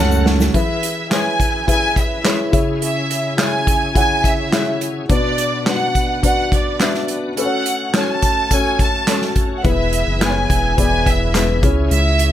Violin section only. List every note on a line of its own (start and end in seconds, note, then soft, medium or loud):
0.00 0.22 F#5 loud
0.56 1.08 E5 medium
1.12 1.68 G#5 medium
1.70 1.96 G#5 loud
1.99 2.55 E5 medium
2.82 3.35 E5 medium
3.40 3.96 G#5 medium
3.97 4.23 G#5 loud
4.26 4.82 E5 medium
5.11 5.63 D5 medium
5.69 6.24 F#5 medium
6.26 6.51 F#5 medium
6.54 7.10 D5 medium
7.39 7.91 F#5 medium
7.97 8.02 A5 medium
8.02 8.08 G#5 medium
8.11 8.52 A5 medium
8.53 8.80 G#5 medium
8.81 9.33 A5 medium
9.58 9.65 F#5 medium
9.66 10.22 E5 medium
10.24 10.79 G#5 medium
10.81 11.06 G#5 medium
11.07 11.64 E5 medium
11.91 12.32 E5 medium